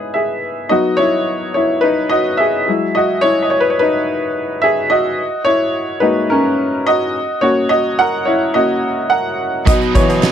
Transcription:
Already playing: G#3 B3 D#4 E4 G#4 B4 C#5
0.14 G#4 E5
0.69 F#3 B3 D#4 F#4 D#5
0.97 E4 C#5
1.54 E4 C#5
1.81 D#4 B4
2.09 F#4 D#5
2.37 G#4 E5
2.67 F#3 G#3 E4
2.95 F#4 D#5
3.21 E4 C#5
3.42 D#5
3.50 C#5
3.60 B4
3.70 C#5
3.79 D#4 B4
4.62 G#4 E5
4.90 F#4 D#5
5.45 E4 C#5
6.00 G#3 A#3 D#4 F#4 B4
6.30 C#4 A#4
6.87 F#4 D#5
7.41 A#3 C#4 F#4 C#5
7.69 F#4 D#5
7.99 A#4 F#5
8.25 E4 C#5
8.54 A#3 C#4 F#4 D#5
9.10 A#4 F#5
9.65 B2 F#3 B3 D#4 F#4 B4 D#5, kick, closed hi-hat
9.81 closed hi-hat
9.95 E3 C#5, kick, closed hi-hat
10.09 B2, closed hi-hat
10.22 F#3 B3 D#4 B4, snare, clap

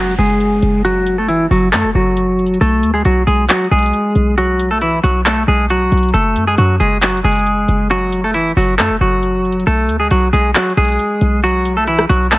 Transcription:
Already playing: F#1 F#3 F#4 C#5 F#5, downlifter
0.04 closed hi-hat
0.11 closed hi-hat
0.18 F#1 G#3 G#4, closed hi-hat
0.26 closed hi-hat
0.29 closed hi-hat
0.33 closed hi-hat
0.40 closed hi-hat
0.62 F#1, closed hi-hat
0.85 F#3 F#4, closed hi-hat
1.07 closed hi-hat
1.18 A3 A4
1.28 E3 E4, closed hi-hat
1.51 F#1 F#3 F#4, open hi-hat
1.73 F#2 A3 A4, clap, closed hi-hat
1.84 F#1
1.95 F#1 F#3 F#4
2.17 closed hi-hat
2.39 closed hi-hat
2.46 closed hi-hat
2.54 closed hi-hat
2.61 B1 A3 A4, closed hi-hat
2.83 D2, closed hi-hat
2.94 G#3 G#4
3.05 B1 F#3 F#4, closed hi-hat
3.27 B1 G#3 G#4, closed hi-hat
3.49 F#3 F#4, clap, closed hi-hat
3.57 closed hi-hat
3.64 closed hi-hat
3.71 B1 G#3 G#4, closed hi-hat
3.79 closed hi-hat
3.82 closed hi-hat
3.86 closed hi-hat
3.93 closed hi-hat
4.15 B1, closed hi-hat
4.38 F#3 F#4, closed hi-hat
4.59 closed hi-hat
4.71 A3 A4
4.81 E3 E4, closed hi-hat
5.04 B1 F#3 F#4, closed hi-hat
5.26 A3 A4, clap, closed hi-hat
5.48 B1 G#3 G#4
5.70 F#3 F#4, closed hi-hat
5.92 B1, closed hi-hat, open hi-hat
5.97 closed hi-hat
6.03 closed hi-hat
6.09 closed hi-hat
6.14 F#1 A3 A4, closed hi-hat
6.36 F#2, closed hi-hat
6.47 G#3 G#4
6.58 F#2 F#3 F#4, closed hi-hat
6.80 F#1 G#3 G#4, closed hi-hat
7.02 F#3 F#4, clap, closed hi-hat
7.10 closed hi-hat
7.17 closed hi-hat
7.24 F#1 G#3 G#4, closed hi-hat
7.32 closed hi-hat
7.35 closed hi-hat
7.39 closed hi-hat
7.46 closed hi-hat
7.68 F#1, closed hi-hat
7.91 F#3 F#4, closed hi-hat
8.12 closed hi-hat
8.24 A3 A4
8.34 E3 E4, closed hi-hat
8.57 F#1 F#3 F#4, open hi-hat
8.78 F#2 A3 A4, clap, closed hi-hat
8.90 F#1
9.01 F#1 F#3 F#4
9.23 closed hi-hat
9.45 closed hi-hat
9.52 closed hi-hat
9.60 closed hi-hat
9.67 B1 A3 A4, closed hi-hat
9.89 D2, closed hi-hat
10.00 G#3 G#4
10.11 B1 F#3 F#4, closed hi-hat
10.33 B1 G#3 G#4, closed hi-hat
10.55 F#3 F#4, clap, closed hi-hat
10.63 closed hi-hat
10.70 closed hi-hat
10.77 B1 G#3 G#4, closed hi-hat
10.85 closed hi-hat
10.88 closed hi-hat
10.92 closed hi-hat
10.99 closed hi-hat
11.21 B1, closed hi-hat
11.44 F#3 F#4, closed hi-hat
11.65 closed hi-hat
11.77 A3 A4
11.87 E3 E4, closed hi-hat
11.99 cross-stick
12.09 B1 F#3 F#4, closed hi-hat
12.31 A3 A4, clap, closed hi-hat

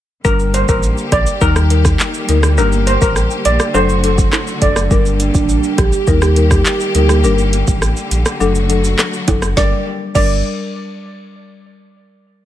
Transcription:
0.25 G1 D3 G3 A#3 D4 G4 A#4, kick, shaker, maracas
0.39 maracas, shaker
0.54 C5, closed hi-hat, shaker, maracas
0.69 A1 A#4, kick, maracas, shaker
0.83 maracas, shaker
0.97 shaker, maracas
1.12 A#1 D5, kick, cross-stick, closed hi-hat, shaker
1.26 maracas, shaker
1.41 D#2 D#3 G3 A#3 D#4 A#4, kick, shaker, maracas
1.56 cross-stick, shaker, maracas
1.70 G3 D#4 A#4, closed hi-hat, shaker
1.85 kick, cross-stick, shaker, maracas
2.00 clap, shaker, maracas
2.14 maracas, shaker
2.29 D2 G3 D#4 A#4, closed hi-hat, shaker
2.43 cross-stick, shaker, maracas
2.58 G1 D3 G3 D4 G4 A#4, shaker, maracas
2.72 maracas, shaker
2.87 C5, closed hi-hat, shaker, maracas
3.01 A1 A#4, kick, maracas, shaker
3.16 cross-stick, maracas, shaker
3.31 shaker, maracas
3.45 A#1 D5, closed hi-hat, shaker
3.60 cross-stick, maracas, shaker
3.74 F#1 F#3 A3 D4 F#4 A4 C5, shaker, maracas
3.89 shaker, maracas
4.03 F#3 D4 A4, closed hi-hat, shaker
4.18 kick, shaker, maracas
4.33 cross-stick, clap, high timbale, shaker, maracas
4.47 maracas, shaker
4.62 F#1 F#3 D4 A4 D5, kick, closed hi-hat, shaker
4.76 cross-stick, shaker, maracas
4.91 G1 G3 A#3 D4 G4 A#4, kick, shaker, maracas
5.05 shaker, maracas
5.20 closed hi-hat, shaker, maracas
5.34 A1, kick, shaker, maracas
5.49 maracas, shaker
5.63 shaker, maracas
5.78 A#1 G4, kick, cross-stick, closed hi-hat, shaker
5.92 maracas, shaker
6.07 D#2 D#3 G3 A#3 D#4 A#4, kick, shaker, maracas
6.22 G4, cross-stick, shaker, maracas
6.36 G3 D#4 A#4, closed hi-hat, shaker
6.51 G4, kick, cross-stick, shaker, maracas
6.66 clap, shaker, maracas
6.80 maracas, shaker
6.95 D2 G3 D#4 A#4, closed hi-hat, shaker
7.09 cross-stick, shaker, maracas
7.24 G1 D3 G3 D4 A#4, shaker, maracas
7.38 maracas, shaker
7.53 closed hi-hat, shaker, maracas
7.67 A1, kick, maracas, shaker
7.82 cross-stick, maracas, shaker
7.97 shaker, maracas
8.11 A#1, closed hi-hat, shaker, maracas
8.25 cross-stick, maracas, shaker
8.40 F#1 F#3 A3 D4 F#4 A4, shaker, maracas
8.55 shaker, maracas
8.69 F#3 D4 A4, closed hi-hat, shaker
8.84 shaker, maracas
8.99 cross-stick, clap, shaker, maracas
9.13 maracas, shaker
9.28 F#1 F#3 D4 A4, kick, closed hi-hat, high timbale, shaker, maracas
9.42 cross-stick, shaker, maracas
9.57 G1 D3 G3 A#3 D4 G4 A#4 D5, kick, snare, maracas
10.15 G1 G3 D4 A#4 D5, kick, crash, maracas

